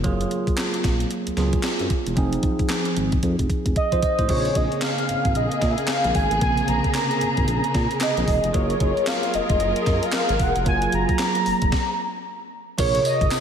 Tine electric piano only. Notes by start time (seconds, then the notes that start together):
0.04 F#3 A#3 F4 G#4
1.37 F#3 A#3 F4 G#4
2.16 F3 C4 D#4 G#4
3.92 D#4 C5
4.02 D#5
4.18 D#4 C5
4.28 C#3 A#3 C4 G#4
6.40 C3 A#3 C4 G#4
6.47 C#3
8.53 F#3 A#3 F4 G#4
10.65 F#3 A#3 F4 G#4
12.78 C3 F4 G#4 A#4 C#5